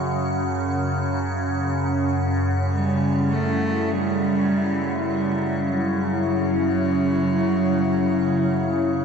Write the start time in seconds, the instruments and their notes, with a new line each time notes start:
Already playing: synth drone F#2 C#3, analog synth pad C#3 C#4 F#4, cello F#3, ambient pad F#5
2.64 analog synth pad E4
2.71 cello G3
3.32 cello A3
3.91 cello G3
5.09 cello G3
5.69 cello F#3